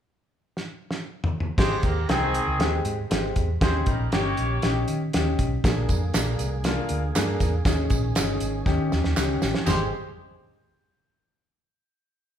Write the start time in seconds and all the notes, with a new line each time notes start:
0.57 snare
0.91 snare
1.24 floor tom
1.40 floor tom
1.58 G#1 G#3 C4 G4 C5, kick, snare, crash
1.83 D#2 A#3 G4 A#4, kick, closed hi-hat
2.09 C2 D#3 G#3 C4 G#4 G5, snare, closed hi-hat
2.34 closed hi-hat
2.48 C#2
2.59 D#2 G#3 C4 G4, snare, closed hi-hat
2.85 G#2, closed hi-hat
3.10 G#1 G#3 C4 G4, snare, closed hi-hat
3.36 E2, kick, closed hi-hat
3.61 D#2 C4 C#4 D#4 G4 G#4 C5, kick, snare, closed hi-hat
3.86 A#1 G3 D#4 A#4, kick, closed hi-hat
4.12 G1 A#3 C#4 D#4 G4 C#5, snare, closed hi-hat
4.37 A#1, closed hi-hat
4.62 A#1 C#4 D#4 G4, snare, closed hi-hat
4.88 D#3, closed hi-hat
5.13 D#2 C#4 D#4 G4, snare, closed hi-hat
5.39 B1, kick, closed hi-hat
5.64 A#1 D3 A#3 D4 G#4, kick, snare, closed hi-hat, tambourine
5.89 F2, kick, closed hi-hat, tambourine
6.14 A#1 A#3 D4 G#4, snare, clap, closed hi-hat, tambourine
6.39 C2, closed hi-hat, tambourine
6.64 A#3 D4 F4, snare, closed hi-hat, tambourine
6.89 D2, closed hi-hat
7.15 G2 A#3 D4 G#4, snare, clap, closed hi-hat, tambourine
7.40 E2, kick, snare, closed hi-hat, tambourine
7.65 D#2 D#3 C#4 D#4 G#4, kick, snare, closed hi-hat, tambourine
7.90 A#1, kick, closed hi-hat, tambourine
8.15 G1 C#4 D#4 G#4, snare, clap, closed hi-hat, tambourine
8.40 G#1, closed hi-hat, tambourine
8.65 D#2 C#4 D#4 G4, kick, snare, tambourine
8.79 D#3
8.92 D#2, snare, tambourine
9.04 D#2, snare
9.16 C#2 C#4 D#4 G4, snare, clap, tambourine
9.42 A1, snare, tambourine
9.55 snare
9.65 G#1 G3 G#3 C4 G4 G#4 C5, snare, floor tom, tambourine, splash